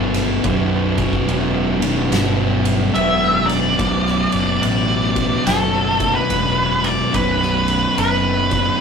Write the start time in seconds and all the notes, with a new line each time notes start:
Already playing: G1 B1 F#2 B2
0.14 snare, ride
0.43 B0 B1 F#2 B2, kick, ride
0.98 kick, ride
1.13 kick
1.28 E1, ride
1.80 B1 F#2 B2, ride
2.11 G1, snare, ride
2.65 ride
2.94 E1 B1 F#2 B2 E5, ride
3.47 D5, snare, ride
3.77 B0 B1 F#2 B2, kick, ride
4.07 snare
4.32 F#1, ride
4.62 A1 D5, ride
5.16 kick, ride
5.45 F#1 B1 F#2 A4, snare, ride
5.49 B2
6.00 kick, ride
6.15 B4
6.30 E1, kick, ride
6.84 D5, ride
7.12 B0 B1 F#2 B2 B4, kick, ride
7.42 snare
7.68 ride
7.98 F#1 B4, ride
8.51 kick, ride